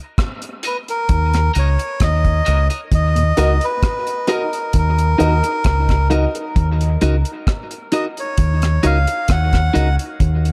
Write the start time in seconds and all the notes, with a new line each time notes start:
0.18 kick, cross-stick, closed hi-hat
0.42 closed hi-hat
0.63 A#3 D#4 F#4 A#4 D#5, closed hi-hat
0.67 B4
0.88 A#4, closed hi-hat
1.09 D#2, kick, closed hi-hat
1.33 cross-stick, closed hi-hat
1.54 C#2 A#3 D#4 F#4 A#4 D#5, closed hi-hat
1.59 C#5
1.79 muted clean electric guitar stroke, closed hi-hat
2.00 D#2 D#5, kick, cross-stick, closed hi-hat
2.25 kick, closed hi-hat
2.45 C#2 D#4 F#4 A#4 D#5, closed hi-hat
2.70 D#4 F#4 A#4 D#5, closed hi-hat
2.92 D#2 D#5, kick, closed hi-hat
3.15 D#2 A#2, closed hi-hat
3.37 C#2 D#4 F#4 A#4 D#5, closed hi-hat
3.61 B4, closed hi-hat
3.83 kick, cross-stick, closed hi-hat
4.07 closed hi-hat
4.27 D#4 F#4 A#4 D#5, closed hi-hat
4.53 closed hi-hat
4.73 D#2, kick, closed hi-hat
4.78 A#4
4.98 closed hi-hat
5.18 D#2 D#4 F#4 A#4 D#5, closed hi-hat
5.43 muted clean electric guitar stroke, closed hi-hat
5.64 C#2, kick, cross-stick, closed hi-hat
5.89 kick, cross-stick, closed hi-hat
6.10 D#4 F#4 A#4 D#5, closed hi-hat
6.35 A#4 D#5, closed hi-hat
6.56 D#2, kick, closed hi-hat
6.81 closed hi-hat
7.01 C#2 D#4 F#4 A#4 D#5, closed hi-hat
7.25 closed hi-hat
7.47 kick, cross-stick, closed hi-hat
7.71 closed hi-hat
7.92 D#4 F#4 A#4 D#5, closed hi-hat
8.17 C#5, closed hi-hat
8.38 D#2, kick, closed hi-hat
8.62 cross-stick, closed hi-hat
8.83 C#2 D#4 F#4 A#4 D#5 F5, closed hi-hat
9.07 muted clean electric guitar stroke, closed hi-hat
9.28 D#2 F#5, kick, cross-stick, closed hi-hat
9.53 kick, cross-stick, closed hi-hat
9.74 C#2 D#4 F#4 A#4 D#5, closed hi-hat
9.99 closed hi-hat
10.20 D#2, kick, closed hi-hat
10.45 closed hi-hat